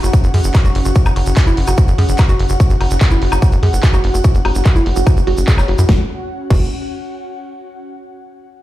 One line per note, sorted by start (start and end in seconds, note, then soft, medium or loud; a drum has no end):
0.00 0.09 F#1 medium
0.00 5.88 C#4 medium
0.00 5.89 F#4 medium
0.00 0.07 F#4 medium
0.00 5.89 F#5 medium
0.00 closed hi-hat soft
0.00 shaker medium
0.13 0.17 F#4 medium
0.13 kick loud
0.13 closed hi-hat medium
0.13 shaker medium
0.24 0.30 F#1 medium
0.24 closed hi-hat soft
0.24 shaker soft
0.34 0.40 F#2 loud
0.34 0.40 G#4 medium
0.34 open hi-hat loud
0.44 0.51 F#1 medium
0.44 closed hi-hat soft
0.44 shaker medium
0.55 0.58 F#4 medium
0.55 kick loud
0.55 clap loud
0.55 closed hi-hat medium
0.55 high woodblock soft
0.55 shaker medium
0.65 0.71 F#1 medium
0.65 0.71 F#4 loud
0.65 closed hi-hat soft
0.65 shaker soft
0.75 0.81 F#1 loud
0.75 open hi-hat medium
0.85 0.92 F#1 medium
0.85 0.91 F#4 medium
0.85 closed hi-hat soft
0.85 shaker medium
0.95 0.99 F#4 medium
0.95 kick loud
0.95 closed hi-hat medium
0.95 shaker medium
1.06 1.12 F#1 medium
1.06 closed hi-hat soft
1.06 high woodblock medium
1.06 shaker soft
1.16 1.22 F#1 loud
1.16 1.22 F#4 medium
1.16 open hi-hat loud
1.26 1.33 F#1 medium
1.26 closed hi-hat soft
1.26 shaker medium
1.37 1.40 F#4 medium
1.37 kick loud
1.37 clap loud
1.37 closed hi-hat medium
1.37 shaker medium
1.47 1.53 F#1 medium
1.47 1.56 E4 loud
1.47 closed hi-hat soft
1.47 shaker soft
1.57 1.64 F#1 loud
1.57 open hi-hat medium
1.67 1.74 F#1 loud
1.67 1.71 F#4 medium
1.67 closed hi-hat soft
1.67 high woodblock soft
1.67 shaker medium
1.78 1.81 F#4 medium
1.78 kick loud
1.78 closed hi-hat medium
1.78 shaker medium
1.88 1.94 F#1 medium
1.88 closed hi-hat soft
1.88 shaker soft
1.98 2.05 F#2 loud
1.98 2.04 G#4 medium
1.98 open hi-hat loud
2.09 2.15 F#1 medium
2.09 closed hi-hat soft
2.09 shaker medium
2.18 2.23 F#4 medium
2.18 kick loud
2.18 clap loud
2.18 closed hi-hat medium
2.18 high woodblock medium
2.18 shaker medium
2.29 2.35 F#1 medium
2.29 2.35 F#4 loud
2.29 closed hi-hat soft
2.29 shaker soft
2.39 2.46 F#1 loud
2.39 open hi-hat medium
2.49 2.56 F#1 medium
2.49 2.56 F#4 medium
2.49 shaker medium
2.60 2.64 F#4 medium
2.60 kick loud
2.60 closed hi-hat medium
2.60 shaker medium
2.70 2.77 F#1 medium
2.70 closed hi-hat soft
2.70 shaker soft
2.81 2.87 F#1 loud
2.81 2.87 F#4 medium
2.81 open hi-hat loud
2.81 high woodblock soft
2.91 2.97 F#1 medium
2.91 closed hi-hat soft
2.91 shaker medium
3.01 3.05 F#4 medium
3.01 kick loud
3.01 clap loud
3.01 closed hi-hat medium
3.01 shaker medium
3.11 3.18 F#1 medium
3.11 3.20 E4 loud
3.11 closed hi-hat soft
3.11 shaker soft
3.22 3.28 F#1 loud
3.22 open hi-hat medium
3.32 3.38 F#1 medium
3.32 3.36 F#4 medium
3.32 closed hi-hat soft
3.32 high woodblock medium
3.32 shaker medium
3.42 3.46 F#4 medium
3.42 kick loud
3.42 closed hi-hat medium
3.42 shaker medium
3.52 3.59 F#1 medium
3.52 closed hi-hat soft
3.52 shaker soft
3.63 3.69 F#2 loud
3.63 3.69 G#4 medium
3.63 open hi-hat loud
3.73 3.79 F#1 medium
3.73 shaker medium
3.83 3.87 F#4 medium
3.83 kick loud
3.83 clap loud
3.83 closed hi-hat medium
3.83 shaker medium
3.93 4.00 F#1 medium
3.93 4.00 F#4 loud
3.93 closed hi-hat soft
3.93 high woodblock soft
3.93 shaker soft
4.04 4.10 F#1 loud
4.04 open hi-hat medium
4.14 4.20 F#1 medium
4.14 4.20 F#4 medium
4.14 closed hi-hat soft
4.14 shaker medium
4.24 4.28 F#4 medium
4.24 kick loud
4.24 closed hi-hat medium
4.24 shaker medium
4.35 4.41 F#1 medium
4.35 closed hi-hat soft
4.35 shaker soft
4.45 4.51 F#1 loud
4.45 4.51 F#4 medium
4.45 open hi-hat loud
4.45 high woodblock medium
4.55 4.62 F#1 medium
4.55 closed hi-hat soft
4.55 shaker medium
4.65 4.69 F#4 medium
4.65 kick loud
4.65 clap loud
4.65 closed hi-hat medium
4.65 shaker medium
4.76 4.82 F#1 medium
4.76 4.85 E4 loud
4.76 closed hi-hat soft
4.76 shaker soft
4.86 4.92 F#1 loud
4.86 open hi-hat medium
4.96 5.03 F#1 medium
4.96 5.00 F#4 medium
4.96 closed hi-hat soft
4.96 shaker medium
5.07 5.10 F#4 medium
5.07 kick loud
5.07 closed hi-hat medium
5.07 high woodblock soft
5.07 shaker medium
5.17 5.23 F#1 medium
5.17 closed hi-hat soft
5.17 shaker soft
5.27 5.33 F#1 loud
5.27 5.36 F#4 loud
5.27 open hi-hat loud
5.37 5.44 F#1 medium
5.37 closed hi-hat soft
5.37 shaker medium
5.48 5.51 G#4 loud
5.48 kick loud
5.48 clap loud
5.48 closed hi-hat medium
5.48 shaker medium
5.58 5.64 F#1 medium
5.58 5.67 C#5 medium
5.58 clap soft
5.58 closed hi-hat soft
5.58 high woodblock medium
5.58 shaker soft
5.68 5.75 F#1 loud
5.68 5.72 F#4 medium
5.68 open hi-hat medium
5.79 5.85 F#2 medium
5.79 5.88 E4 medium
5.79 closed hi-hat soft
5.79 shaker medium
5.89 6.00 F#1 loud
5.89 7.49 C#4 medium
5.89 6.00 F#4 loud
5.89 kick loud
5.89 snare medium
5.95 7.49 F#4 medium
6.01 7.49 F#5 medium
6.50 6.70 F#1 loud
6.50 6.70 F#4 medium
6.50 kick loud
6.50 crash medium